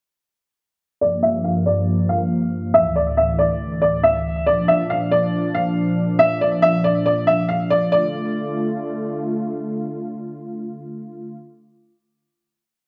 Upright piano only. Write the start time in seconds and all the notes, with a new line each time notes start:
1.01 D5
1.23 E5
1.44 F5
1.66 D5
2.09 F5
2.74 E5
2.96 D5
3.17 E5
3.39 D5
3.82 D5
4.03 E5
4.46 D5
4.68 E5
4.90 F5
5.11 D5
5.55 F5
6.19 E5
6.41 D5
6.62 E5
6.84 D5
7.06 D5
7.27 E5
7.49 F5
7.70 D5
7.92 D5